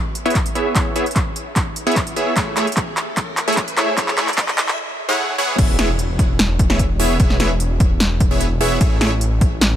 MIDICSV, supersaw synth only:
0, 0, Header, 1, 2, 480
1, 0, Start_track
1, 0, Key_signature, 4, "major"
1, 0, Tempo, 402685
1, 900, Time_signature, 4, 2, 24, 8
1, 11637, End_track
2, 0, Start_track
2, 0, Title_t, "Supersaw synth"
2, 0, Program_c, 0, 81
2, 304, Note_on_c, 0, 59, 95
2, 304, Note_on_c, 0, 64, 92
2, 304, Note_on_c, 0, 68, 90
2, 304, Note_on_c, 0, 73, 89
2, 304, Note_on_c, 0, 76, 106
2, 475, Note_off_c, 0, 59, 0
2, 475, Note_off_c, 0, 64, 0
2, 475, Note_off_c, 0, 68, 0
2, 475, Note_off_c, 0, 73, 0
2, 475, Note_off_c, 0, 76, 0
2, 660, Note_on_c, 0, 59, 81
2, 660, Note_on_c, 0, 64, 72
2, 660, Note_on_c, 0, 68, 74
2, 660, Note_on_c, 0, 73, 78
2, 660, Note_on_c, 0, 76, 88
2, 873, Note_off_c, 0, 59, 0
2, 873, Note_off_c, 0, 64, 0
2, 873, Note_off_c, 0, 68, 0
2, 873, Note_off_c, 0, 73, 0
2, 873, Note_off_c, 0, 76, 0
2, 899, Note_on_c, 0, 59, 84
2, 899, Note_on_c, 0, 64, 80
2, 899, Note_on_c, 0, 68, 78
2, 899, Note_on_c, 0, 73, 78
2, 899, Note_on_c, 0, 76, 96
2, 1112, Note_off_c, 0, 59, 0
2, 1112, Note_off_c, 0, 64, 0
2, 1112, Note_off_c, 0, 68, 0
2, 1112, Note_off_c, 0, 73, 0
2, 1112, Note_off_c, 0, 76, 0
2, 1140, Note_on_c, 0, 59, 91
2, 1140, Note_on_c, 0, 64, 79
2, 1140, Note_on_c, 0, 68, 80
2, 1140, Note_on_c, 0, 73, 80
2, 1140, Note_on_c, 0, 76, 93
2, 1253, Note_off_c, 0, 64, 0
2, 1253, Note_off_c, 0, 73, 0
2, 1253, Note_off_c, 0, 76, 0
2, 1254, Note_off_c, 0, 59, 0
2, 1254, Note_off_c, 0, 68, 0
2, 2225, Note_on_c, 0, 59, 98
2, 2225, Note_on_c, 0, 64, 87
2, 2225, Note_on_c, 0, 68, 89
2, 2225, Note_on_c, 0, 73, 91
2, 2225, Note_on_c, 0, 76, 111
2, 2395, Note_off_c, 0, 64, 0
2, 2395, Note_off_c, 0, 68, 0
2, 2395, Note_off_c, 0, 73, 0
2, 2396, Note_off_c, 0, 59, 0
2, 2396, Note_off_c, 0, 76, 0
2, 2578, Note_on_c, 0, 59, 84
2, 2578, Note_on_c, 0, 68, 77
2, 2579, Note_on_c, 0, 64, 75
2, 2579, Note_on_c, 0, 73, 75
2, 2579, Note_on_c, 0, 76, 91
2, 2792, Note_off_c, 0, 59, 0
2, 2792, Note_off_c, 0, 64, 0
2, 2792, Note_off_c, 0, 68, 0
2, 2792, Note_off_c, 0, 73, 0
2, 2792, Note_off_c, 0, 76, 0
2, 2820, Note_on_c, 0, 57, 89
2, 2820, Note_on_c, 0, 68, 78
2, 2820, Note_on_c, 0, 76, 93
2, 3032, Note_off_c, 0, 76, 0
2, 3033, Note_off_c, 0, 57, 0
2, 3033, Note_off_c, 0, 68, 0
2, 3058, Note_on_c, 0, 76, 96
2, 3059, Note_on_c, 0, 57, 88
2, 3059, Note_on_c, 0, 64, 80
2, 3059, Note_on_c, 0, 68, 79
2, 3059, Note_on_c, 0, 73, 82
2, 3173, Note_off_c, 0, 57, 0
2, 3173, Note_off_c, 0, 64, 0
2, 3173, Note_off_c, 0, 68, 0
2, 3173, Note_off_c, 0, 73, 0
2, 3173, Note_off_c, 0, 76, 0
2, 4144, Note_on_c, 0, 57, 99
2, 4144, Note_on_c, 0, 64, 87
2, 4144, Note_on_c, 0, 68, 91
2, 4144, Note_on_c, 0, 73, 89
2, 4144, Note_on_c, 0, 76, 106
2, 4315, Note_off_c, 0, 57, 0
2, 4315, Note_off_c, 0, 64, 0
2, 4315, Note_off_c, 0, 68, 0
2, 4315, Note_off_c, 0, 73, 0
2, 4315, Note_off_c, 0, 76, 0
2, 4498, Note_on_c, 0, 57, 81
2, 4498, Note_on_c, 0, 64, 79
2, 4498, Note_on_c, 0, 76, 94
2, 4499, Note_on_c, 0, 68, 74
2, 4499, Note_on_c, 0, 73, 76
2, 4712, Note_off_c, 0, 57, 0
2, 4712, Note_off_c, 0, 64, 0
2, 4712, Note_off_c, 0, 68, 0
2, 4712, Note_off_c, 0, 73, 0
2, 4712, Note_off_c, 0, 76, 0
2, 4738, Note_on_c, 0, 64, 76
2, 4738, Note_on_c, 0, 76, 97
2, 4739, Note_on_c, 0, 57, 88
2, 4739, Note_on_c, 0, 68, 78
2, 4739, Note_on_c, 0, 73, 78
2, 4952, Note_off_c, 0, 57, 0
2, 4952, Note_off_c, 0, 64, 0
2, 4952, Note_off_c, 0, 68, 0
2, 4952, Note_off_c, 0, 73, 0
2, 4952, Note_off_c, 0, 76, 0
2, 4977, Note_on_c, 0, 57, 87
2, 4977, Note_on_c, 0, 64, 83
2, 4978, Note_on_c, 0, 68, 83
2, 4978, Note_on_c, 0, 73, 81
2, 4978, Note_on_c, 0, 76, 97
2, 5092, Note_off_c, 0, 57, 0
2, 5092, Note_off_c, 0, 64, 0
2, 5092, Note_off_c, 0, 68, 0
2, 5092, Note_off_c, 0, 73, 0
2, 5092, Note_off_c, 0, 76, 0
2, 6063, Note_on_c, 0, 57, 88
2, 6063, Note_on_c, 0, 64, 82
2, 6063, Note_on_c, 0, 68, 78
2, 6063, Note_on_c, 0, 73, 79
2, 6063, Note_on_c, 0, 78, 101
2, 6391, Note_off_c, 0, 57, 0
2, 6391, Note_off_c, 0, 68, 0
2, 6391, Note_off_c, 0, 73, 0
2, 6391, Note_off_c, 0, 78, 0
2, 6392, Note_off_c, 0, 64, 0
2, 6417, Note_on_c, 0, 59, 83
2, 6417, Note_on_c, 0, 64, 74
2, 6417, Note_on_c, 0, 73, 75
2, 6418, Note_on_c, 0, 68, 71
2, 6418, Note_on_c, 0, 78, 87
2, 6631, Note_off_c, 0, 59, 0
2, 6631, Note_off_c, 0, 64, 0
2, 6631, Note_off_c, 0, 73, 0
2, 6632, Note_off_c, 0, 68, 0
2, 6632, Note_off_c, 0, 78, 0
2, 6656, Note_on_c, 0, 59, 90
2, 6656, Note_on_c, 0, 64, 78
2, 6656, Note_on_c, 0, 68, 80
2, 6656, Note_on_c, 0, 73, 79
2, 6657, Note_on_c, 0, 76, 94
2, 6871, Note_off_c, 0, 59, 0
2, 6871, Note_off_c, 0, 64, 0
2, 6871, Note_off_c, 0, 68, 0
2, 6871, Note_off_c, 0, 73, 0
2, 6871, Note_off_c, 0, 76, 0
2, 6898, Note_on_c, 0, 59, 88
2, 6898, Note_on_c, 0, 64, 80
2, 6898, Note_on_c, 0, 68, 81
2, 6898, Note_on_c, 0, 73, 78
2, 6898, Note_on_c, 0, 76, 98
2, 7012, Note_off_c, 0, 64, 0
2, 7012, Note_off_c, 0, 73, 0
2, 7012, Note_off_c, 0, 76, 0
2, 7013, Note_off_c, 0, 59, 0
2, 7013, Note_off_c, 0, 68, 0
2, 7983, Note_on_c, 0, 59, 97
2, 7983, Note_on_c, 0, 64, 91
2, 7983, Note_on_c, 0, 76, 105
2, 7984, Note_on_c, 0, 68, 89
2, 7984, Note_on_c, 0, 73, 91
2, 8154, Note_off_c, 0, 76, 0
2, 8155, Note_off_c, 0, 59, 0
2, 8155, Note_off_c, 0, 64, 0
2, 8155, Note_off_c, 0, 68, 0
2, 8155, Note_off_c, 0, 73, 0
2, 8339, Note_on_c, 0, 59, 84
2, 8339, Note_on_c, 0, 64, 75
2, 8339, Note_on_c, 0, 73, 76
2, 8340, Note_on_c, 0, 68, 78
2, 8340, Note_on_c, 0, 76, 93
2, 8552, Note_off_c, 0, 59, 0
2, 8552, Note_off_c, 0, 64, 0
2, 8552, Note_off_c, 0, 68, 0
2, 8552, Note_off_c, 0, 73, 0
2, 8553, Note_off_c, 0, 76, 0
2, 8579, Note_on_c, 0, 59, 89
2, 8579, Note_on_c, 0, 76, 94
2, 8580, Note_on_c, 0, 64, 80
2, 8580, Note_on_c, 0, 68, 82
2, 8792, Note_off_c, 0, 59, 0
2, 8792, Note_off_c, 0, 68, 0
2, 8792, Note_off_c, 0, 76, 0
2, 8793, Note_off_c, 0, 64, 0
2, 8819, Note_on_c, 0, 59, 86
2, 8819, Note_on_c, 0, 64, 85
2, 8819, Note_on_c, 0, 68, 83
2, 8819, Note_on_c, 0, 73, 81
2, 8819, Note_on_c, 0, 76, 98
2, 8933, Note_off_c, 0, 59, 0
2, 8933, Note_off_c, 0, 64, 0
2, 8933, Note_off_c, 0, 68, 0
2, 8933, Note_off_c, 0, 73, 0
2, 8933, Note_off_c, 0, 76, 0
2, 9904, Note_on_c, 0, 64, 92
2, 9905, Note_on_c, 0, 59, 95
2, 9905, Note_on_c, 0, 68, 87
2, 9905, Note_on_c, 0, 73, 89
2, 9905, Note_on_c, 0, 76, 107
2, 10075, Note_off_c, 0, 59, 0
2, 10075, Note_off_c, 0, 64, 0
2, 10075, Note_off_c, 0, 68, 0
2, 10075, Note_off_c, 0, 73, 0
2, 10075, Note_off_c, 0, 76, 0
2, 10259, Note_on_c, 0, 59, 87
2, 10259, Note_on_c, 0, 64, 76
2, 10259, Note_on_c, 0, 76, 90
2, 10260, Note_on_c, 0, 68, 77
2, 10260, Note_on_c, 0, 73, 74
2, 10472, Note_off_c, 0, 59, 0
2, 10472, Note_off_c, 0, 64, 0
2, 10472, Note_off_c, 0, 76, 0
2, 10473, Note_off_c, 0, 68, 0
2, 10473, Note_off_c, 0, 73, 0
2, 10500, Note_on_c, 0, 57, 90
2, 10500, Note_on_c, 0, 68, 81
2, 10713, Note_off_c, 0, 57, 0
2, 10713, Note_off_c, 0, 68, 0
2, 10738, Note_on_c, 0, 64, 85
2, 10739, Note_on_c, 0, 57, 86
2, 10739, Note_on_c, 0, 68, 82
2, 10739, Note_on_c, 0, 73, 83
2, 10739, Note_on_c, 0, 76, 100
2, 10852, Note_off_c, 0, 64, 0
2, 10853, Note_off_c, 0, 57, 0
2, 10853, Note_off_c, 0, 68, 0
2, 10853, Note_off_c, 0, 73, 0
2, 10853, Note_off_c, 0, 76, 0
2, 11637, End_track
0, 0, End_of_file